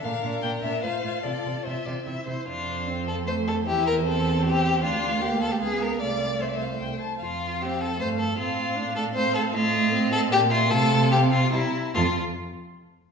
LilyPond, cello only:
\new Staff \with { instrumentName = "Cello" } { \clef bass \time 3/4 \key f \major \tempo 4 = 152 bes,8 bes,8 bes,8 bes,8 a,8 a,8 | c8 c8 c8 c8 c8 c8 | f,2. | e,2. |
d,2 des,4 | c,2 c,8 r8 | f,2 g,4 | a,2. |
a,2 bes,4 | c2 c8 r8 | f,8 r2 r8 | }